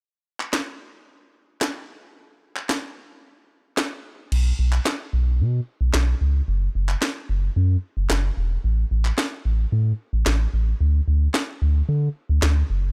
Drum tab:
CC |----------------|----------------|x---------------|----------------|
CP |---xx-------x---|---xx-------x---|---xx-------x---|---xx-------x---|
SD |----o-------o---|----o-------o---|----o-------o---|----o-------o---|

CC |----------------|----------------|
CP |---xx-------x---|----x-------x---|
SD |----o-------o---|----o-------o---|